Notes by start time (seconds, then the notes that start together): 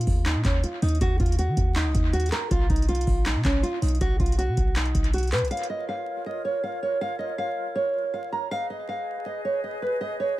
Already playing: F4
0.01 closed hi-hat
0.07 D#2, kick, open hi-hat
0.26 D#4, clap, closed hi-hat
0.35 A#2
0.45 D#2 C#4, kick, clap, closed hi-hat
0.64 F4, closed hi-hat
0.82 D#2 D#4, closed hi-hat, open hi-hat
0.88 closed hi-hat
0.95 closed hi-hat
1.01 D#2 F#4, kick, closed hi-hat
1.20 D#2 F4, kick, closed hi-hat
1.26 closed hi-hat
1.32 closed hi-hat
1.39 F#4, closed hi-hat
1.48 D#3
1.57 D#2, kick, closed hi-hat
1.76 D#4, clap, closed hi-hat
1.85 C#2
1.95 D#2, kick, closed hi-hat
2.13 F#4, closed hi-hat
2.20 closed hi-hat
2.26 closed hi-hat
2.32 A#4, clap, closed hi-hat
2.51 B1 F4, kick, closed hi-hat
2.70 B1 D#4, kick, closed hi-hat
2.76 closed hi-hat
2.82 closed hi-hat
2.88 F4, closed hi-hat
2.95 closed hi-hat
3.01 closed hi-hat
3.07 A#1, kick, open hi-hat
3.26 D#4, clap, closed hi-hat
3.35 B2
3.45 B1 C#4, kick, clap, closed hi-hat
3.63 F4, closed hi-hat
3.82 B1 D#4, closed hi-hat, open hi-hat
3.88 closed hi-hat
3.95 closed hi-hat
4.01 B1 F#4, kick, closed hi-hat
4.20 B1 F4, kick, closed hi-hat
4.26 closed hi-hat
4.32 closed hi-hat
4.38 F#4, closed hi-hat
4.48 B2
4.57 B1, kick, closed hi-hat
4.76 D#4, clap, closed hi-hat
4.85 closed hi-hat
4.95 B1, kick, closed hi-hat
5.04 closed hi-hat
5.14 F#4, closed hi-hat
5.18 closed hi-hat
5.23 closed hi-hat
5.28 closed hi-hat
5.32 B2 B4, clap, closed hi-hat, open hi-hat
5.39 B1, closed hi-hat
5.45 closed hi-hat
5.51 F4 A#4 C#5 F5, closed hi-hat
5.57 closed hi-hat
5.63 closed hi-hat
5.70 D#5
5.89 F5
6.26 D#5
6.45 C#5
6.63 F5
6.83 C#5
7.01 F5
7.19 D#5
7.38 F5
7.75 C#5
8.14 F5
8.32 A#5
8.51 G#4 B4 D#5 F5
8.70 D#5
8.89 F5
9.26 D#5
9.45 C#5
9.64 D#5
9.82 B4
10.01 D#5
10.20 C#5